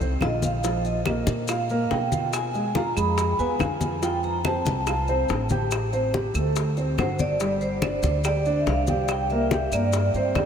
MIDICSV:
0, 0, Header, 1, 5, 480
1, 0, Start_track
1, 0, Tempo, 422535
1, 726, Time_signature, 4, 2, 24, 8
1, 11877, End_track
2, 0, Start_track
2, 0, Title_t, "Vibraphone"
2, 0, Program_c, 0, 11
2, 266, Note_on_c, 0, 75, 77
2, 480, Note_off_c, 0, 75, 0
2, 508, Note_on_c, 0, 77, 79
2, 978, Note_on_c, 0, 75, 76
2, 991, Note_off_c, 0, 77, 0
2, 1419, Note_off_c, 0, 75, 0
2, 1689, Note_on_c, 0, 77, 83
2, 2072, Note_off_c, 0, 77, 0
2, 2086, Note_on_c, 0, 77, 63
2, 2166, Note_off_c, 0, 77, 0
2, 2172, Note_on_c, 0, 79, 81
2, 2617, Note_off_c, 0, 79, 0
2, 2654, Note_on_c, 0, 80, 100
2, 3135, Note_on_c, 0, 82, 87
2, 3145, Note_off_c, 0, 80, 0
2, 3241, Note_off_c, 0, 82, 0
2, 3380, Note_on_c, 0, 83, 102
2, 3854, Note_on_c, 0, 80, 89
2, 3869, Note_off_c, 0, 83, 0
2, 4526, Note_off_c, 0, 80, 0
2, 4585, Note_on_c, 0, 79, 91
2, 4689, Note_off_c, 0, 79, 0
2, 4819, Note_on_c, 0, 82, 87
2, 4925, Note_off_c, 0, 82, 0
2, 5057, Note_on_c, 0, 81, 80
2, 6448, Note_off_c, 0, 81, 0
2, 7942, Note_on_c, 0, 72, 82
2, 8177, Note_on_c, 0, 74, 77
2, 8183, Note_off_c, 0, 72, 0
2, 8620, Note_off_c, 0, 74, 0
2, 8651, Note_on_c, 0, 72, 81
2, 9324, Note_off_c, 0, 72, 0
2, 9368, Note_on_c, 0, 74, 90
2, 9741, Note_off_c, 0, 74, 0
2, 9772, Note_on_c, 0, 76, 68
2, 9845, Note_on_c, 0, 77, 93
2, 9850, Note_off_c, 0, 76, 0
2, 10292, Note_off_c, 0, 77, 0
2, 10340, Note_on_c, 0, 79, 105
2, 10445, Note_off_c, 0, 79, 0
2, 10571, Note_on_c, 0, 76, 95
2, 11049, Note_on_c, 0, 74, 90
2, 11062, Note_off_c, 0, 76, 0
2, 11877, Note_off_c, 0, 74, 0
2, 11877, End_track
3, 0, Start_track
3, 0, Title_t, "Grand piano"
3, 0, Program_c, 1, 0
3, 7, Note_on_c, 1, 60, 65
3, 8, Note_on_c, 1, 72, 72
3, 204, Note_off_c, 1, 60, 0
3, 204, Note_off_c, 1, 72, 0
3, 243, Note_on_c, 1, 65, 61
3, 247, Note_on_c, 1, 77, 61
3, 638, Note_off_c, 1, 65, 0
3, 640, Note_off_c, 1, 77, 0
3, 725, Note_on_c, 1, 53, 71
3, 730, Note_on_c, 1, 65, 75
3, 1119, Note_off_c, 1, 53, 0
3, 1122, Note_off_c, 1, 65, 0
3, 1204, Note_on_c, 1, 58, 58
3, 1205, Note_on_c, 1, 70, 65
3, 1599, Note_off_c, 1, 58, 0
3, 1599, Note_off_c, 1, 70, 0
3, 1692, Note_on_c, 1, 65, 62
3, 1693, Note_on_c, 1, 77, 68
3, 1887, Note_off_c, 1, 65, 0
3, 1887, Note_off_c, 1, 77, 0
3, 1938, Note_on_c, 1, 58, 76
3, 1940, Note_on_c, 1, 70, 75
3, 2327, Note_off_c, 1, 58, 0
3, 2328, Note_off_c, 1, 70, 0
3, 2413, Note_on_c, 1, 65, 67
3, 2417, Note_on_c, 1, 77, 68
3, 2804, Note_off_c, 1, 65, 0
3, 2806, Note_off_c, 1, 77, 0
3, 2896, Note_on_c, 1, 56, 73
3, 2901, Note_on_c, 1, 68, 67
3, 3089, Note_off_c, 1, 56, 0
3, 3092, Note_off_c, 1, 68, 0
3, 3127, Note_on_c, 1, 65, 65
3, 3135, Note_on_c, 1, 77, 64
3, 3324, Note_off_c, 1, 65, 0
3, 3329, Note_off_c, 1, 77, 0
3, 3363, Note_on_c, 1, 56, 68
3, 3372, Note_on_c, 1, 68, 73
3, 3759, Note_off_c, 1, 56, 0
3, 3764, Note_off_c, 1, 68, 0
3, 3855, Note_on_c, 1, 59, 72
3, 3857, Note_on_c, 1, 71, 76
3, 4049, Note_off_c, 1, 59, 0
3, 4050, Note_off_c, 1, 71, 0
3, 4099, Note_on_c, 1, 65, 61
3, 4104, Note_on_c, 1, 77, 60
3, 4489, Note_off_c, 1, 65, 0
3, 4491, Note_off_c, 1, 77, 0
3, 4566, Note_on_c, 1, 65, 75
3, 4570, Note_on_c, 1, 53, 70
3, 4961, Note_off_c, 1, 65, 0
3, 4964, Note_off_c, 1, 53, 0
3, 5059, Note_on_c, 1, 60, 61
3, 5060, Note_on_c, 1, 72, 61
3, 5449, Note_off_c, 1, 60, 0
3, 5449, Note_off_c, 1, 72, 0
3, 5543, Note_on_c, 1, 65, 66
3, 5548, Note_on_c, 1, 77, 66
3, 5734, Note_off_c, 1, 65, 0
3, 5737, Note_off_c, 1, 77, 0
3, 5782, Note_on_c, 1, 60, 76
3, 5785, Note_on_c, 1, 72, 75
3, 6171, Note_off_c, 1, 60, 0
3, 6173, Note_off_c, 1, 72, 0
3, 6264, Note_on_c, 1, 67, 64
3, 6266, Note_on_c, 1, 79, 71
3, 6652, Note_off_c, 1, 67, 0
3, 6653, Note_off_c, 1, 79, 0
3, 6736, Note_on_c, 1, 60, 69
3, 6744, Note_on_c, 1, 72, 71
3, 6931, Note_off_c, 1, 60, 0
3, 6935, Note_off_c, 1, 72, 0
3, 6972, Note_on_c, 1, 67, 68
3, 6978, Note_on_c, 1, 79, 63
3, 7168, Note_off_c, 1, 67, 0
3, 7171, Note_off_c, 1, 79, 0
3, 7218, Note_on_c, 1, 57, 68
3, 7220, Note_on_c, 1, 69, 69
3, 7608, Note_off_c, 1, 57, 0
3, 7610, Note_off_c, 1, 69, 0
3, 7697, Note_on_c, 1, 60, 70
3, 7701, Note_on_c, 1, 72, 67
3, 7891, Note_off_c, 1, 60, 0
3, 7893, Note_off_c, 1, 72, 0
3, 7939, Note_on_c, 1, 66, 62
3, 7947, Note_on_c, 1, 78, 61
3, 8329, Note_off_c, 1, 66, 0
3, 8333, Note_off_c, 1, 78, 0
3, 8411, Note_on_c, 1, 55, 79
3, 8417, Note_on_c, 1, 67, 70
3, 8804, Note_off_c, 1, 55, 0
3, 8807, Note_off_c, 1, 67, 0
3, 8890, Note_on_c, 1, 62, 64
3, 8897, Note_on_c, 1, 74, 70
3, 9283, Note_off_c, 1, 62, 0
3, 9287, Note_off_c, 1, 74, 0
3, 9370, Note_on_c, 1, 67, 65
3, 9377, Note_on_c, 1, 79, 68
3, 9566, Note_off_c, 1, 67, 0
3, 9570, Note_off_c, 1, 79, 0
3, 9613, Note_on_c, 1, 62, 80
3, 9617, Note_on_c, 1, 74, 68
3, 10004, Note_off_c, 1, 62, 0
3, 10007, Note_off_c, 1, 74, 0
3, 10100, Note_on_c, 1, 67, 64
3, 10107, Note_on_c, 1, 79, 62
3, 10488, Note_off_c, 1, 67, 0
3, 10492, Note_off_c, 1, 79, 0
3, 10587, Note_on_c, 1, 58, 71
3, 10588, Note_on_c, 1, 70, 69
3, 10775, Note_off_c, 1, 58, 0
3, 10776, Note_off_c, 1, 70, 0
3, 10826, Note_on_c, 1, 67, 68
3, 10828, Note_on_c, 1, 79, 68
3, 11014, Note_off_c, 1, 67, 0
3, 11016, Note_off_c, 1, 79, 0
3, 11066, Note_on_c, 1, 58, 73
3, 11072, Note_on_c, 1, 70, 77
3, 11451, Note_off_c, 1, 58, 0
3, 11454, Note_off_c, 1, 70, 0
3, 11535, Note_on_c, 1, 60, 69
3, 11541, Note_on_c, 1, 72, 75
3, 11728, Note_off_c, 1, 60, 0
3, 11730, Note_off_c, 1, 72, 0
3, 11784, Note_on_c, 1, 67, 62
3, 11786, Note_on_c, 1, 79, 61
3, 11877, Note_off_c, 1, 67, 0
3, 11877, Note_off_c, 1, 79, 0
3, 11877, End_track
4, 0, Start_track
4, 0, Title_t, "Upright bass"
4, 0, Program_c, 2, 32
4, 0, Note_on_c, 2, 36, 68
4, 224, Note_off_c, 2, 36, 0
4, 236, Note_on_c, 2, 34, 81
4, 1372, Note_off_c, 2, 34, 0
4, 1439, Note_on_c, 2, 46, 76
4, 2118, Note_off_c, 2, 46, 0
4, 2162, Note_on_c, 2, 47, 79
4, 3296, Note_off_c, 2, 47, 0
4, 3369, Note_on_c, 2, 41, 80
4, 3815, Note_off_c, 2, 41, 0
4, 3848, Note_on_c, 2, 40, 71
4, 4071, Note_off_c, 2, 40, 0
4, 4087, Note_on_c, 2, 41, 76
4, 5219, Note_off_c, 2, 41, 0
4, 5283, Note_on_c, 2, 36, 80
4, 5961, Note_off_c, 2, 36, 0
4, 6013, Note_on_c, 2, 33, 82
4, 7142, Note_off_c, 2, 33, 0
4, 7204, Note_on_c, 2, 38, 85
4, 7881, Note_off_c, 2, 38, 0
4, 7929, Note_on_c, 2, 31, 82
4, 9059, Note_off_c, 2, 31, 0
4, 9117, Note_on_c, 2, 38, 86
4, 9797, Note_off_c, 2, 38, 0
4, 9839, Note_on_c, 2, 36, 89
4, 10972, Note_off_c, 2, 36, 0
4, 11035, Note_on_c, 2, 43, 89
4, 11485, Note_off_c, 2, 43, 0
4, 11517, Note_on_c, 2, 43, 69
4, 11743, Note_off_c, 2, 43, 0
4, 11755, Note_on_c, 2, 41, 86
4, 11877, Note_off_c, 2, 41, 0
4, 11877, End_track
5, 0, Start_track
5, 0, Title_t, "Drums"
5, 0, Note_on_c, 9, 63, 33
5, 12, Note_on_c, 9, 70, 30
5, 111, Note_off_c, 9, 63, 0
5, 125, Note_off_c, 9, 70, 0
5, 235, Note_on_c, 9, 63, 69
5, 241, Note_on_c, 9, 75, 58
5, 248, Note_on_c, 9, 70, 25
5, 251, Note_on_c, 9, 60, 64
5, 251, Note_on_c, 9, 61, 74
5, 348, Note_off_c, 9, 63, 0
5, 355, Note_off_c, 9, 75, 0
5, 361, Note_off_c, 9, 70, 0
5, 364, Note_off_c, 9, 60, 0
5, 364, Note_off_c, 9, 61, 0
5, 480, Note_on_c, 9, 63, 83
5, 483, Note_on_c, 9, 70, 65
5, 496, Note_on_c, 9, 60, 33
5, 594, Note_off_c, 9, 63, 0
5, 597, Note_off_c, 9, 70, 0
5, 609, Note_off_c, 9, 60, 0
5, 715, Note_on_c, 9, 63, 34
5, 724, Note_on_c, 9, 70, 86
5, 734, Note_on_c, 9, 60, 64
5, 829, Note_off_c, 9, 63, 0
5, 838, Note_off_c, 9, 70, 0
5, 847, Note_off_c, 9, 60, 0
5, 961, Note_on_c, 9, 63, 33
5, 962, Note_on_c, 9, 70, 30
5, 1074, Note_off_c, 9, 63, 0
5, 1075, Note_off_c, 9, 70, 0
5, 1198, Note_on_c, 9, 63, 94
5, 1202, Note_on_c, 9, 70, 27
5, 1211, Note_on_c, 9, 60, 54
5, 1212, Note_on_c, 9, 75, 59
5, 1312, Note_off_c, 9, 63, 0
5, 1315, Note_off_c, 9, 70, 0
5, 1325, Note_off_c, 9, 60, 0
5, 1326, Note_off_c, 9, 75, 0
5, 1440, Note_on_c, 9, 63, 91
5, 1444, Note_on_c, 9, 70, 72
5, 1554, Note_off_c, 9, 63, 0
5, 1557, Note_off_c, 9, 70, 0
5, 1677, Note_on_c, 9, 63, 30
5, 1678, Note_on_c, 9, 70, 73
5, 1690, Note_on_c, 9, 60, 67
5, 1690, Note_on_c, 9, 75, 67
5, 1791, Note_off_c, 9, 63, 0
5, 1791, Note_off_c, 9, 70, 0
5, 1804, Note_off_c, 9, 60, 0
5, 1804, Note_off_c, 9, 75, 0
5, 1924, Note_on_c, 9, 63, 33
5, 1924, Note_on_c, 9, 70, 29
5, 2038, Note_off_c, 9, 63, 0
5, 2038, Note_off_c, 9, 70, 0
5, 2166, Note_on_c, 9, 70, 26
5, 2168, Note_on_c, 9, 60, 62
5, 2168, Note_on_c, 9, 61, 69
5, 2171, Note_on_c, 9, 63, 29
5, 2280, Note_off_c, 9, 70, 0
5, 2282, Note_off_c, 9, 60, 0
5, 2282, Note_off_c, 9, 61, 0
5, 2284, Note_off_c, 9, 63, 0
5, 2407, Note_on_c, 9, 63, 76
5, 2409, Note_on_c, 9, 70, 68
5, 2520, Note_off_c, 9, 63, 0
5, 2522, Note_off_c, 9, 70, 0
5, 2647, Note_on_c, 9, 70, 86
5, 2649, Note_on_c, 9, 63, 32
5, 2651, Note_on_c, 9, 60, 68
5, 2654, Note_on_c, 9, 75, 60
5, 2760, Note_off_c, 9, 70, 0
5, 2762, Note_off_c, 9, 63, 0
5, 2765, Note_off_c, 9, 60, 0
5, 2768, Note_off_c, 9, 75, 0
5, 2885, Note_on_c, 9, 60, 32
5, 2890, Note_on_c, 9, 63, 34
5, 2892, Note_on_c, 9, 70, 26
5, 2999, Note_off_c, 9, 60, 0
5, 3004, Note_off_c, 9, 63, 0
5, 3006, Note_off_c, 9, 70, 0
5, 3124, Note_on_c, 9, 63, 92
5, 3130, Note_on_c, 9, 60, 60
5, 3133, Note_on_c, 9, 70, 27
5, 3238, Note_off_c, 9, 63, 0
5, 3244, Note_off_c, 9, 60, 0
5, 3246, Note_off_c, 9, 70, 0
5, 3369, Note_on_c, 9, 75, 59
5, 3374, Note_on_c, 9, 63, 33
5, 3374, Note_on_c, 9, 70, 70
5, 3376, Note_on_c, 9, 60, 31
5, 3483, Note_off_c, 9, 75, 0
5, 3487, Note_off_c, 9, 63, 0
5, 3487, Note_off_c, 9, 70, 0
5, 3490, Note_off_c, 9, 60, 0
5, 3609, Note_on_c, 9, 60, 72
5, 3610, Note_on_c, 9, 70, 71
5, 3613, Note_on_c, 9, 63, 32
5, 3723, Note_off_c, 9, 60, 0
5, 3723, Note_off_c, 9, 70, 0
5, 3727, Note_off_c, 9, 63, 0
5, 3848, Note_on_c, 9, 63, 34
5, 3854, Note_on_c, 9, 70, 30
5, 3962, Note_off_c, 9, 63, 0
5, 3968, Note_off_c, 9, 70, 0
5, 4083, Note_on_c, 9, 63, 67
5, 4091, Note_on_c, 9, 60, 65
5, 4091, Note_on_c, 9, 61, 78
5, 4095, Note_on_c, 9, 70, 27
5, 4095, Note_on_c, 9, 75, 62
5, 4196, Note_off_c, 9, 63, 0
5, 4204, Note_off_c, 9, 60, 0
5, 4204, Note_off_c, 9, 61, 0
5, 4209, Note_off_c, 9, 70, 0
5, 4209, Note_off_c, 9, 75, 0
5, 4325, Note_on_c, 9, 63, 81
5, 4327, Note_on_c, 9, 70, 62
5, 4333, Note_on_c, 9, 60, 34
5, 4438, Note_off_c, 9, 63, 0
5, 4441, Note_off_c, 9, 70, 0
5, 4446, Note_off_c, 9, 60, 0
5, 4570, Note_on_c, 9, 63, 33
5, 4573, Note_on_c, 9, 70, 84
5, 4575, Note_on_c, 9, 60, 63
5, 4684, Note_off_c, 9, 63, 0
5, 4686, Note_off_c, 9, 70, 0
5, 4688, Note_off_c, 9, 60, 0
5, 4808, Note_on_c, 9, 70, 27
5, 4814, Note_on_c, 9, 63, 34
5, 4921, Note_off_c, 9, 70, 0
5, 4927, Note_off_c, 9, 63, 0
5, 5046, Note_on_c, 9, 70, 31
5, 5051, Note_on_c, 9, 63, 89
5, 5053, Note_on_c, 9, 75, 58
5, 5055, Note_on_c, 9, 60, 61
5, 5160, Note_off_c, 9, 70, 0
5, 5165, Note_off_c, 9, 63, 0
5, 5166, Note_off_c, 9, 75, 0
5, 5168, Note_off_c, 9, 60, 0
5, 5289, Note_on_c, 9, 70, 74
5, 5299, Note_on_c, 9, 63, 94
5, 5403, Note_off_c, 9, 70, 0
5, 5413, Note_off_c, 9, 63, 0
5, 5530, Note_on_c, 9, 70, 77
5, 5532, Note_on_c, 9, 60, 69
5, 5540, Note_on_c, 9, 75, 63
5, 5542, Note_on_c, 9, 63, 31
5, 5644, Note_off_c, 9, 70, 0
5, 5646, Note_off_c, 9, 60, 0
5, 5653, Note_off_c, 9, 75, 0
5, 5655, Note_off_c, 9, 63, 0
5, 5767, Note_on_c, 9, 70, 30
5, 5777, Note_on_c, 9, 63, 33
5, 5881, Note_off_c, 9, 70, 0
5, 5891, Note_off_c, 9, 63, 0
5, 6003, Note_on_c, 9, 70, 28
5, 6015, Note_on_c, 9, 63, 32
5, 6021, Note_on_c, 9, 60, 67
5, 6021, Note_on_c, 9, 61, 78
5, 6116, Note_off_c, 9, 70, 0
5, 6128, Note_off_c, 9, 63, 0
5, 6134, Note_off_c, 9, 60, 0
5, 6134, Note_off_c, 9, 61, 0
5, 6240, Note_on_c, 9, 70, 61
5, 6255, Note_on_c, 9, 63, 85
5, 6354, Note_off_c, 9, 70, 0
5, 6368, Note_off_c, 9, 63, 0
5, 6487, Note_on_c, 9, 70, 81
5, 6496, Note_on_c, 9, 63, 32
5, 6500, Note_on_c, 9, 60, 65
5, 6500, Note_on_c, 9, 75, 63
5, 6600, Note_off_c, 9, 70, 0
5, 6609, Note_off_c, 9, 63, 0
5, 6613, Note_off_c, 9, 75, 0
5, 6614, Note_off_c, 9, 60, 0
5, 6735, Note_on_c, 9, 70, 31
5, 6736, Note_on_c, 9, 63, 35
5, 6743, Note_on_c, 9, 60, 33
5, 6848, Note_off_c, 9, 70, 0
5, 6850, Note_off_c, 9, 63, 0
5, 6856, Note_off_c, 9, 60, 0
5, 6973, Note_on_c, 9, 70, 29
5, 6976, Note_on_c, 9, 63, 83
5, 6981, Note_on_c, 9, 60, 56
5, 7087, Note_off_c, 9, 70, 0
5, 7089, Note_off_c, 9, 63, 0
5, 7094, Note_off_c, 9, 60, 0
5, 7208, Note_on_c, 9, 70, 71
5, 7214, Note_on_c, 9, 75, 64
5, 7218, Note_on_c, 9, 63, 31
5, 7222, Note_on_c, 9, 60, 33
5, 7321, Note_off_c, 9, 70, 0
5, 7328, Note_off_c, 9, 75, 0
5, 7332, Note_off_c, 9, 63, 0
5, 7336, Note_off_c, 9, 60, 0
5, 7450, Note_on_c, 9, 70, 82
5, 7453, Note_on_c, 9, 63, 31
5, 7459, Note_on_c, 9, 60, 71
5, 7564, Note_off_c, 9, 70, 0
5, 7567, Note_off_c, 9, 63, 0
5, 7573, Note_off_c, 9, 60, 0
5, 7689, Note_on_c, 9, 70, 29
5, 7693, Note_on_c, 9, 63, 33
5, 7803, Note_off_c, 9, 70, 0
5, 7807, Note_off_c, 9, 63, 0
5, 7927, Note_on_c, 9, 70, 27
5, 7932, Note_on_c, 9, 63, 73
5, 7933, Note_on_c, 9, 75, 60
5, 7937, Note_on_c, 9, 60, 61
5, 7937, Note_on_c, 9, 61, 77
5, 8041, Note_off_c, 9, 70, 0
5, 8045, Note_off_c, 9, 63, 0
5, 8047, Note_off_c, 9, 75, 0
5, 8050, Note_off_c, 9, 60, 0
5, 8050, Note_off_c, 9, 61, 0
5, 8166, Note_on_c, 9, 70, 66
5, 8172, Note_on_c, 9, 63, 83
5, 8177, Note_on_c, 9, 60, 33
5, 8280, Note_off_c, 9, 70, 0
5, 8286, Note_off_c, 9, 63, 0
5, 8291, Note_off_c, 9, 60, 0
5, 8405, Note_on_c, 9, 70, 82
5, 8416, Note_on_c, 9, 60, 62
5, 8518, Note_off_c, 9, 70, 0
5, 8529, Note_off_c, 9, 60, 0
5, 8645, Note_on_c, 9, 70, 26
5, 8652, Note_on_c, 9, 63, 35
5, 8758, Note_off_c, 9, 70, 0
5, 8766, Note_off_c, 9, 63, 0
5, 8883, Note_on_c, 9, 63, 97
5, 8885, Note_on_c, 9, 70, 30
5, 8892, Note_on_c, 9, 60, 56
5, 8895, Note_on_c, 9, 75, 60
5, 8997, Note_off_c, 9, 63, 0
5, 8998, Note_off_c, 9, 70, 0
5, 9006, Note_off_c, 9, 60, 0
5, 9008, Note_off_c, 9, 75, 0
5, 9118, Note_on_c, 9, 70, 65
5, 9129, Note_on_c, 9, 63, 90
5, 9231, Note_off_c, 9, 70, 0
5, 9242, Note_off_c, 9, 63, 0
5, 9360, Note_on_c, 9, 70, 78
5, 9369, Note_on_c, 9, 60, 74
5, 9369, Note_on_c, 9, 75, 62
5, 9370, Note_on_c, 9, 63, 28
5, 9473, Note_off_c, 9, 70, 0
5, 9483, Note_off_c, 9, 60, 0
5, 9483, Note_off_c, 9, 63, 0
5, 9483, Note_off_c, 9, 75, 0
5, 9603, Note_on_c, 9, 70, 27
5, 9609, Note_on_c, 9, 63, 34
5, 9717, Note_off_c, 9, 70, 0
5, 9723, Note_off_c, 9, 63, 0
5, 9844, Note_on_c, 9, 70, 28
5, 9849, Note_on_c, 9, 60, 67
5, 9849, Note_on_c, 9, 61, 80
5, 9855, Note_on_c, 9, 63, 29
5, 9958, Note_off_c, 9, 70, 0
5, 9962, Note_off_c, 9, 60, 0
5, 9962, Note_off_c, 9, 61, 0
5, 9969, Note_off_c, 9, 63, 0
5, 10076, Note_on_c, 9, 70, 67
5, 10085, Note_on_c, 9, 63, 86
5, 10189, Note_off_c, 9, 70, 0
5, 10199, Note_off_c, 9, 63, 0
5, 10318, Note_on_c, 9, 70, 75
5, 10322, Note_on_c, 9, 60, 70
5, 10326, Note_on_c, 9, 63, 33
5, 10328, Note_on_c, 9, 75, 59
5, 10432, Note_off_c, 9, 70, 0
5, 10436, Note_off_c, 9, 60, 0
5, 10440, Note_off_c, 9, 63, 0
5, 10442, Note_off_c, 9, 75, 0
5, 10561, Note_on_c, 9, 70, 27
5, 10563, Note_on_c, 9, 60, 31
5, 10564, Note_on_c, 9, 63, 34
5, 10675, Note_off_c, 9, 70, 0
5, 10677, Note_off_c, 9, 60, 0
5, 10677, Note_off_c, 9, 63, 0
5, 10804, Note_on_c, 9, 60, 59
5, 10805, Note_on_c, 9, 63, 95
5, 10807, Note_on_c, 9, 70, 32
5, 10917, Note_off_c, 9, 60, 0
5, 10919, Note_off_c, 9, 63, 0
5, 10920, Note_off_c, 9, 70, 0
5, 11042, Note_on_c, 9, 70, 70
5, 11044, Note_on_c, 9, 63, 31
5, 11045, Note_on_c, 9, 60, 32
5, 11055, Note_on_c, 9, 75, 64
5, 11156, Note_off_c, 9, 70, 0
5, 11158, Note_off_c, 9, 63, 0
5, 11159, Note_off_c, 9, 60, 0
5, 11168, Note_off_c, 9, 75, 0
5, 11275, Note_on_c, 9, 70, 80
5, 11282, Note_on_c, 9, 63, 31
5, 11285, Note_on_c, 9, 60, 74
5, 11389, Note_off_c, 9, 70, 0
5, 11396, Note_off_c, 9, 63, 0
5, 11398, Note_off_c, 9, 60, 0
5, 11521, Note_on_c, 9, 70, 29
5, 11524, Note_on_c, 9, 63, 33
5, 11634, Note_off_c, 9, 70, 0
5, 11637, Note_off_c, 9, 63, 0
5, 11760, Note_on_c, 9, 70, 28
5, 11762, Note_on_c, 9, 60, 63
5, 11762, Note_on_c, 9, 61, 82
5, 11764, Note_on_c, 9, 63, 65
5, 11769, Note_on_c, 9, 75, 60
5, 11874, Note_off_c, 9, 70, 0
5, 11875, Note_off_c, 9, 60, 0
5, 11875, Note_off_c, 9, 61, 0
5, 11877, Note_off_c, 9, 63, 0
5, 11877, Note_off_c, 9, 75, 0
5, 11877, End_track
0, 0, End_of_file